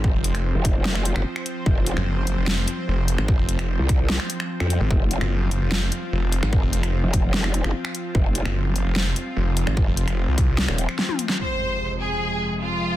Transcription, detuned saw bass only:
X:1
M:4/4
L:1/16
Q:1/4=148
K:Fphr
V:1 name="Detuned saw bass" clef=bass
z F,,,4 z8 z3 | z3 G,,,4 F,,,3 z2 F,,,3 z | z F,,,4 z8 z2 A,,, | z3 G,,,4 F,,,3 z2 F,,,3 z |
z F,,,4 z8 z3 | z3 G,,,4 F,,,3 z2 F,,,3 z | z F,,,4 C,,4 z6 z | z16 |]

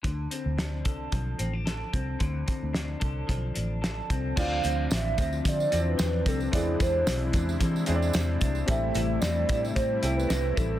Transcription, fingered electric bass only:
X:1
M:4/4
L:1/16
Q:"Swing 16ths" 1/4=111
K:Dm
V:1 name="Fingered electric bass" clef=bass
D,,2 z D,,3 C,,2 =B,,,2 A,,,4 C,,2 | D,,2 z D,,3 C,,2 =B,,,2 A,,,4 C,,2 | D,,2 D,,2 A,,,2 D,,2 D,2 E,,2 E,,2 C,,2 | E,,2 E,,2 =B,,,2 E,,2 E,2 E,,2 E,,2 C,,2 |
A,,,2 A,,,2 E,,2 A,,2 A,,2 C,,2 C,,2 A,,,2 |]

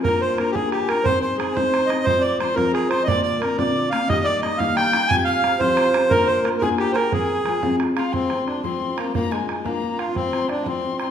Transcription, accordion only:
X:1
M:6/8
L:1/16
Q:3/8=119
K:Fdor
V:1 name="Accordion"
B2 c2 B3/2 G/2 A2 G2 B2 | c2 c2 A2 c4 e2 | c2 d2 c2 B2 A2 c3/2 e/2 | d2 d2 B2 d4 f2 |
e2 d2 e2 f2 g4 | a2 f4 c6 | B2 c2 B3/2 B/2 A2 G3/2 c/2 B2 | A8 z2 F2 |
C4 D2 C4 B,2 | B,2 A,4 B,4 F2 | C4 D2 C4 C2 |]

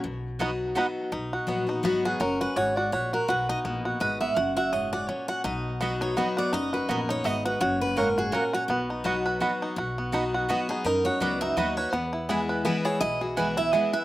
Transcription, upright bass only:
X:1
M:3/4
L:1/8
Q:"Swing" 1/4=166
K:B
V:1 name="Upright bass" clef=bass
B,,,6 | B,,,2 A,,,2 G,,,2 | F,,,2 G,,,2 A,,,2 | B,,,2 A,,,2 G,,,2 |
F,,,6 | B,,,6 | F,,,2 A,,,2 G,,,2 | F,,,6 |
B,,,6 | B,,,6 | F,,2 C,,2 D,,2 | E,,6 |
B,,,6 |]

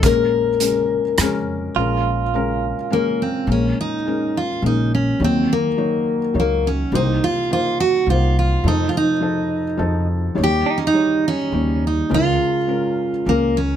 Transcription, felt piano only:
X:1
M:3/4
L:1/8
Q:1/4=104
K:Bbm
V:1 name="Felt piano"
[A,DB]2 [A,DB] z [A,DB]2 | [A,DB]2 [A,DB] z [A,DB]2 | [A,DB]2 [A,DB] z [A,DB]2 | [G,Ed]2 [G,Ed] z [G,Ed]2 |
[B,Ec]2 [B,Ec] z [B,Ec]2 | [F,E=A]2 [F,EA] z [F,EA]2 | [=G,Ed]2 [G,Ed] z [G,Ed]2 | [A,DB]2 [A,DB] z [A,DB]2 |]
V:2 name="Felt piano" clef=bass
[B,,,B,,]6 | [B,,,B,,]6 | [B,,,B,,]6 | [E,,E,]6 |
[C,,C,]6 | [F,,,F,,]6 | [E,,E,]6 | [D,,D,]6 |]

